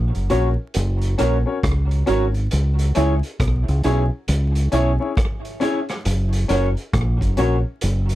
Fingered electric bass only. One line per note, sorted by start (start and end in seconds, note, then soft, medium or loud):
0.00 0.11 A#1 loud
0.15 0.29 F#1 medium
0.32 0.55 A#1 medium
0.76 1.14 F#1 loud
1.20 1.44 A#1 medium
1.64 2.02 C#2 medium
2.09 2.47 G#1 medium
2.53 2.91 C#2 medium
2.97 3.21 C#2 medium
3.40 3.64 B1 medium
3.69 3.83 C#2 medium
3.85 4.09 B1 medium
4.29 4.67 C#2 loud
4.73 4.97 B1 medium
6.06 6.44 F#1 loud
6.50 6.74 F#1 medium
6.94 7.18 A#1 medium
7.22 7.36 F#1 medium
7.39 7.63 A#1 medium
7.83 8.15 F#1 loud